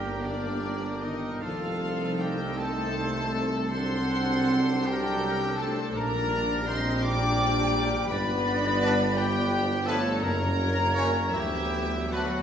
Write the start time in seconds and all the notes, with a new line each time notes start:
Already playing: G1 G2 D3 G3 A#3 D4 G4 A#4 G5
0.24 D3 D4 G4 D5
1.02 D#3 D#4 G4 D#5
1.40 C2 C3 D#3 F3 A3 C4 D#4 F4 A4 F5
2.20 G3 G4 A#4 G5
2.58 A3 A4 C5 A5
3.71 F#3 C4 D4 C5 F#5 C6
4.85 G3 G4 A#4 G5
5.59 A3 A4 C5 A5
5.94 A#1 A#2 G3 A#3 A#4 D5 A#5
6.67 C4 C5 D#5 C6
7.02 D4 D5 G5 D6
8.07 G1 G2 B3 D4 B4 D5 B5
8.80 G3 D4 B4
9.16 F3 G3 B3 G4 B4 G5
9.85 F3 A3 D4 A4 B4 C#5 A5
10.21 F#1 F#2 F#3 A#3 C#4 A#4 C#5 A#5
10.95 F#3 C#4 C#5
11.32 D2 E3 B3 E4 G4 E5
12.12 F#3 D4 F#4 A4 B4 F#5